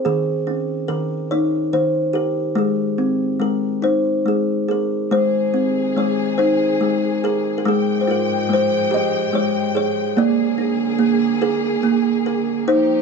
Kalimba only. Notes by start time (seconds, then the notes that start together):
0.05 D#3 G#4
0.47 C#4
0.88 D#3 A#4
1.31 D#4 C#5
1.73 D#3 C5
2.13 G4 A#4
2.55 G#3 G#4
2.98 C4
3.40 G#3 A#4
3.82 D#4 C5
4.26 G#3 G#4
4.68 G#4 A#4
5.11 G#3 C5
5.54 C4
5.96 G#3 C#5
6.38 D#4 C5
6.81 G#3
7.24 G#4 A#4
7.58 A#4
7.65 G#3 G#4
8.01 C5
8.07 F4 A#4
8.49 G#3
8.53 C5
8.91 G4 D#5
9.33 G#3 C#5
9.75 G#4 C#5
10.17 A#3 D5
10.58 D4
10.99 A#3
11.42 G#4 A#4
11.83 A#3
12.26 A#4
12.68 D#4 C5